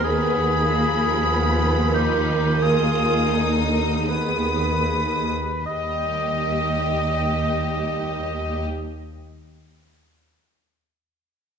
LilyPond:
<<
  \new Staff \with { instrumentName = "Violin section" } { \time 4/4 \key ees \major \tempo 4 = 40 ces'''2 ees'''4 ees'''4 | ees''1 | }
  \new Staff \with { instrumentName = "Oboe" } { \time 4/4 \key ees \major aes'4. g'8 aes'8 r8 ces''4 | ees''1 | }
  \new Staff \with { instrumentName = "Violin section" } { \time 4/4 \key ees \major ces'8 bes8 ces'8 ees'8 f'8 ees'8 ces'8 r8 | g'1 | }
  \new Staff \with { instrumentName = "Viola section" } { \clef bass \time 4/4 \key ees \major << { aes'4 bes'2 aes'4 | r1 | } \\ { ees8 f4. ees8 d8 ees4 | g1 | } >> }
  \new Staff \with { instrumentName = "Cello section" } { \clef bass \time 4/4 \key ees \major ees,1 | ees,1 | }
  \new Staff \with { instrumentName = "Double bass section" } { \clef bass \time 4/4 \key ees \major ees,1 | ees,1 | }
>>